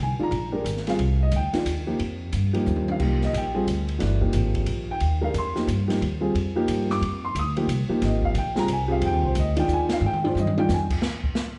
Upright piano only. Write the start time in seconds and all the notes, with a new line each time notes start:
0.03 G#5
0.19 D#3 G#3 D4 F4 A#5
0.52 G#3 D4 G4 A#4
0.87 G3 C4 F4 G#4 F5
1.23 D#5
1.36 G5
1.54 D#3 G#3 D4 F4
1.87 F3 A#3 D#4 G4
2.53 F3 A#3 D#4 G4
2.91 F5
3.00 F3 A#3 D#4 G4
3.25 D#5
3.37 G5
3.54 G3 C4 F4 G#4
3.99 E3 A3 D4 F#4
4.21 F3 A#3 D#4 G4
4.91 G5
5.21 G#3 D4 G4 A#4 F5
5.38 C6
5.55 F3 A#3 D#4 G4
5.88 F3 A#3 D#4 G4
6.21 G3 C4 F4 G#4
6.55 F3 A#3 D#4 G4
6.91 D6
7.25 C6
7.39 D#6
7.56 F3 A#3 D#4 G4
7.88 F3 A#3 D#4 G4
8.05 D#5
8.25 F5
8.38 G5
8.55 G3 C4 F4 G#4 A#5
8.73 G#5
8.88 C4 F4 G4 G#4
8.92 F5
9.06 G5
9.25 C5
9.40 D#5
9.56 D#3 G#3 D4 F4 G5
9.73 G#5
9.93 F5
10.06 G5
10.24 D#3 G#3 D4 F4 C5
10.40 D#5
10.57 D#3 G#3 D4 F4 G5
10.74 G#5